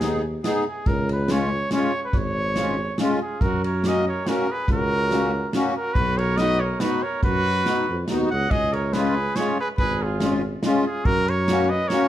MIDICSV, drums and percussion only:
0, 0, Header, 1, 2, 480
1, 0, Start_track
1, 0, Key_signature, 6, "major"
1, 0, Tempo, 424328
1, 983, Time_signature, 3, 2, 24, 8
1, 13666, End_track
2, 0, Start_track
2, 0, Title_t, "Drums"
2, 8, Note_on_c, 9, 38, 54
2, 8, Note_on_c, 9, 51, 39
2, 121, Note_off_c, 9, 38, 0
2, 121, Note_off_c, 9, 51, 0
2, 499, Note_on_c, 9, 38, 57
2, 499, Note_on_c, 9, 51, 52
2, 612, Note_off_c, 9, 38, 0
2, 612, Note_off_c, 9, 51, 0
2, 973, Note_on_c, 9, 51, 41
2, 975, Note_on_c, 9, 36, 82
2, 1086, Note_off_c, 9, 51, 0
2, 1088, Note_off_c, 9, 36, 0
2, 1234, Note_on_c, 9, 51, 43
2, 1347, Note_off_c, 9, 51, 0
2, 1450, Note_on_c, 9, 38, 56
2, 1450, Note_on_c, 9, 51, 40
2, 1563, Note_off_c, 9, 38, 0
2, 1563, Note_off_c, 9, 51, 0
2, 1930, Note_on_c, 9, 38, 62
2, 1930, Note_on_c, 9, 51, 45
2, 2043, Note_off_c, 9, 38, 0
2, 2043, Note_off_c, 9, 51, 0
2, 2412, Note_on_c, 9, 36, 75
2, 2416, Note_on_c, 9, 51, 41
2, 2526, Note_off_c, 9, 36, 0
2, 2529, Note_off_c, 9, 51, 0
2, 2891, Note_on_c, 9, 38, 50
2, 2891, Note_on_c, 9, 51, 37
2, 3004, Note_off_c, 9, 38, 0
2, 3004, Note_off_c, 9, 51, 0
2, 3369, Note_on_c, 9, 38, 60
2, 3369, Note_on_c, 9, 51, 40
2, 3482, Note_off_c, 9, 38, 0
2, 3482, Note_off_c, 9, 51, 0
2, 3857, Note_on_c, 9, 36, 76
2, 3865, Note_on_c, 9, 51, 39
2, 3970, Note_off_c, 9, 36, 0
2, 3978, Note_off_c, 9, 51, 0
2, 4120, Note_on_c, 9, 51, 48
2, 4234, Note_off_c, 9, 51, 0
2, 4339, Note_on_c, 9, 38, 58
2, 4339, Note_on_c, 9, 51, 41
2, 4453, Note_off_c, 9, 38, 0
2, 4453, Note_off_c, 9, 51, 0
2, 4823, Note_on_c, 9, 38, 58
2, 4823, Note_on_c, 9, 51, 39
2, 4936, Note_off_c, 9, 38, 0
2, 4936, Note_off_c, 9, 51, 0
2, 5295, Note_on_c, 9, 36, 77
2, 5301, Note_on_c, 9, 51, 46
2, 5408, Note_off_c, 9, 36, 0
2, 5414, Note_off_c, 9, 51, 0
2, 5779, Note_on_c, 9, 38, 57
2, 5779, Note_on_c, 9, 51, 41
2, 5892, Note_off_c, 9, 38, 0
2, 5892, Note_off_c, 9, 51, 0
2, 6256, Note_on_c, 9, 38, 58
2, 6256, Note_on_c, 9, 51, 44
2, 6370, Note_off_c, 9, 38, 0
2, 6370, Note_off_c, 9, 51, 0
2, 6734, Note_on_c, 9, 36, 75
2, 6742, Note_on_c, 9, 51, 42
2, 6847, Note_off_c, 9, 36, 0
2, 6855, Note_off_c, 9, 51, 0
2, 6997, Note_on_c, 9, 51, 39
2, 7110, Note_off_c, 9, 51, 0
2, 7211, Note_on_c, 9, 38, 54
2, 7211, Note_on_c, 9, 51, 37
2, 7324, Note_off_c, 9, 38, 0
2, 7324, Note_off_c, 9, 51, 0
2, 7691, Note_on_c, 9, 38, 61
2, 7691, Note_on_c, 9, 51, 43
2, 7804, Note_off_c, 9, 38, 0
2, 7804, Note_off_c, 9, 51, 0
2, 8175, Note_on_c, 9, 36, 77
2, 8180, Note_on_c, 9, 51, 44
2, 8288, Note_off_c, 9, 36, 0
2, 8293, Note_off_c, 9, 51, 0
2, 8662, Note_on_c, 9, 38, 59
2, 8662, Note_on_c, 9, 51, 37
2, 8776, Note_off_c, 9, 38, 0
2, 8776, Note_off_c, 9, 51, 0
2, 9135, Note_on_c, 9, 38, 61
2, 9135, Note_on_c, 9, 51, 50
2, 9248, Note_off_c, 9, 38, 0
2, 9248, Note_off_c, 9, 51, 0
2, 9624, Note_on_c, 9, 36, 67
2, 9626, Note_on_c, 9, 51, 47
2, 9737, Note_off_c, 9, 36, 0
2, 9739, Note_off_c, 9, 51, 0
2, 9880, Note_on_c, 9, 51, 42
2, 9993, Note_off_c, 9, 51, 0
2, 10105, Note_on_c, 9, 38, 62
2, 10105, Note_on_c, 9, 51, 40
2, 10218, Note_off_c, 9, 38, 0
2, 10218, Note_off_c, 9, 51, 0
2, 10582, Note_on_c, 9, 38, 60
2, 10582, Note_on_c, 9, 51, 45
2, 10695, Note_off_c, 9, 38, 0
2, 10695, Note_off_c, 9, 51, 0
2, 11065, Note_on_c, 9, 51, 42
2, 11066, Note_on_c, 9, 36, 66
2, 11178, Note_off_c, 9, 51, 0
2, 11179, Note_off_c, 9, 36, 0
2, 11541, Note_on_c, 9, 38, 64
2, 11541, Note_on_c, 9, 51, 39
2, 11654, Note_off_c, 9, 38, 0
2, 11654, Note_off_c, 9, 51, 0
2, 12019, Note_on_c, 9, 38, 63
2, 12019, Note_on_c, 9, 51, 39
2, 12132, Note_off_c, 9, 38, 0
2, 12132, Note_off_c, 9, 51, 0
2, 12502, Note_on_c, 9, 36, 79
2, 12505, Note_on_c, 9, 51, 39
2, 12615, Note_off_c, 9, 36, 0
2, 12618, Note_off_c, 9, 51, 0
2, 12763, Note_on_c, 9, 51, 47
2, 12876, Note_off_c, 9, 51, 0
2, 12984, Note_on_c, 9, 38, 62
2, 12984, Note_on_c, 9, 51, 44
2, 13097, Note_off_c, 9, 38, 0
2, 13097, Note_off_c, 9, 51, 0
2, 13460, Note_on_c, 9, 38, 58
2, 13460, Note_on_c, 9, 51, 43
2, 13574, Note_off_c, 9, 38, 0
2, 13574, Note_off_c, 9, 51, 0
2, 13666, End_track
0, 0, End_of_file